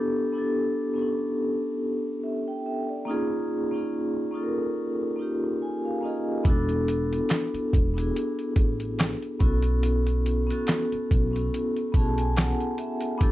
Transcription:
0.00 0.22 B3 loud
0.00 0.23 D4 medium
0.00 0.24 E4 medium
0.00 0.24 G4 medium
0.00 0.25 A4 loud
0.32 0.86 B3 medium
0.32 0.86 D4 medium
0.32 0.87 E4 medium
0.37 0.88 G4 medium
0.37 0.88 A4 medium
0.94 2.39 B3 medium
0.94 1.03 C#4 soft
0.94 2.40 E4 medium
0.94 2.40 G4 medium
0.99 2.42 D4 medium
0.99 2.41 A4 medium
2.24 2.46 E5 medium
2.48 2.64 G5 medium
2.66 2.88 E5 medium
2.89 3.29 D5 medium
3.05 3.61 A#3 loud
3.05 3.61 C#4 medium
3.05 3.62 D#4 loud
3.09 3.63 F4 medium
3.09 3.63 G#4 loud
3.71 4.24 A#3 medium
3.71 4.25 C#4 medium
3.71 4.25 D#4 medium
3.75 4.26 F4 medium
3.75 4.27 G#4 medium
4.31 5.05 A#3 medium
4.31 5.06 C#4 medium
4.31 5.06 D#4 medium
4.31 5.07 F4 medium
4.37 4.43 A4 medium
4.43 5.11 A#4 medium
5.16 5.90 A#3 medium
5.16 5.90 C#4 medium
5.16 5.91 D#4 medium
5.21 5.92 F4 medium
5.21 5.93 G4 medium
5.62 5.83 G#5 medium
5.85 6.02 F5 medium
6.01 6.38 A#3 medium
6.01 6.39 C#4 medium
6.01 6.40 D#4 medium
6.01 6.43 D#5 medium
6.05 6.40 F4 medium
6.05 6.41 G#4 medium
6.44 7.18 E1 medium
6.44 7.69 B3 loud
6.44 7.70 D4 loud
6.44 7.70 E4 loud
6.44 kick loud
6.44 closed hi-hat medium
6.48 7.71 F#4 medium
6.48 7.72 A4 loud
6.69 closed hi-hat soft
6.88 closed hi-hat medium
7.13 closed hi-hat soft
7.29 snare loud
7.29 clap medium
7.29 closed hi-hat medium
7.54 muted upright bass stroke soft
7.54 closed hi-hat soft
7.73 8.09 E1 medium
7.73 kick medium
7.73 closed hi-hat medium
7.94 9.35 B3 medium
7.94 9.35 D4 medium
7.94 9.36 E4 medium
7.98 9.37 F#4 medium
7.98 9.38 G#4 medium
7.98 closed hi-hat soft
8.16 closed hi-hat medium
8.39 closed hi-hat soft
8.56 9.13 A1 medium
8.56 kick medium
8.56 closed hi-hat medium
8.80 closed hi-hat soft
8.99 snare loud
8.99 clap medium
8.99 closed hi-hat medium
9.22 closed hi-hat soft
9.40 10.49 B1 medium
9.40 10.29 B3 medium
9.40 10.30 C#4 medium
9.40 10.31 E4 medium
9.40 kick medium
9.40 closed hi-hat medium
9.44 10.31 F#4 medium
9.44 10.32 A4 medium
9.62 closed hi-hat soft
9.83 closed hi-hat medium
10.07 closed hi-hat soft
10.26 closed hi-hat medium
10.47 11.17 B3 medium
10.47 11.18 C#4 medium
10.47 11.19 E4 medium
10.47 11.19 F#4 medium
10.47 closed hi-hat soft
10.52 11.20 A4 medium
10.67 snare medium
10.67 clap medium
10.67 closed hi-hat medium
10.92 muted upright bass stroke soft
10.92 closed hi-hat soft
11.11 11.47 B1 medium
11.11 kick medium
11.11 closed hi-hat medium
11.31 11.84 B3 medium
11.31 11.85 C#4 medium
11.31 11.86 E4 medium
11.35 11.86 F#4 medium
11.35 11.87 A4 medium
11.35 closed hi-hat soft
11.54 closed hi-hat medium
11.77 closed hi-hat soft
11.92 12.51 B1 medium
11.92 13.02 B3 medium
11.92 13.03 C#4 medium
11.92 13.04 E4 medium
11.92 12.17 A5 medium
11.92 kick medium
11.92 closed hi-hat medium
11.97 13.04 F#4 medium
11.97 13.05 G#4 medium
12.18 12.35 G#5 medium
12.18 closed hi-hat soft
12.36 12.75 F#5 medium
12.36 snare loud
12.36 clap medium
12.36 closed hi-hat medium
12.60 closed hi-hat soft
12.78 13.18 E5 medium
12.78 closed hi-hat medium
13.01 closed hi-hat medium
13.18 13.32 A1 medium
13.18 13.32 B3 loud
13.18 13.32 D4 medium
13.18 13.32 E4 loud
13.18 13.32 G4 medium
13.18 kick loud
13.18 closed hi-hat medium
13.23 13.32 A4 loud

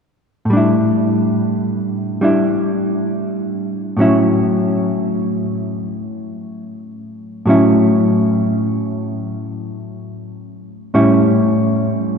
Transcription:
0.45 3.95 A2 soft
0.50 2.20 G3 soft
0.50 2.21 D4 soft
0.57 2.23 E4 soft
2.21 3.97 G3 soft
2.21 3.97 D4 soft
2.21 3.98 E4 soft
3.97 7.44 A2 soft
3.97 7.46 F#3 soft
3.97 7.47 C#4 soft
4.01 7.48 E4 soft
7.46 10.93 A2 soft
7.46 10.94 F#3 soft
7.46 10.93 C#4 soft
7.50 10.94 E4 soft
10.94 12.18 A2 soft
10.94 12.18 G3 soft
10.94 12.18 C#4 soft
10.94 12.18 E4 soft

